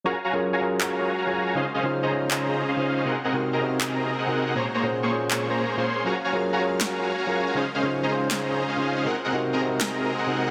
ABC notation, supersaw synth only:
X:1
M:4/4
L:1/16
Q:1/4=160
K:Gblyd
V:1 name="Supersaw synth"
[Gdfab] z [Gdfab] z2 [Gdfab] z2 [Gdfab]4 [Gdfab]3 [Gdfab] | [DAcef] z [DAcef] z2 [DAceb] z2 [DAceb]4 [DAcef]3 [DAcef] | [CABeg] z [CABeg] z2 [CABeb] z2 [CABeb]4 [CABeg]3 [CABeg] | [B,Acdb] z [B,Acdb] z2 [B,Acdd'] z2 [B,Acdd']2 [B,Acdb]3 [B,Acdc']3 |
[Gdfab] z [Gdfab] z2 [Gdfab] z2 [Gdfab]4 [Gdfab]3 [Gdfab] | [DAcef] z [DAcef] z2 [DAceb] z2 [DAceb]4 [DAcef]3 [DAcef] | [CABeg] z [CABeg] z2 [CABeb] z2 [CABeb]4 [CABeg]3 [CABeg] |]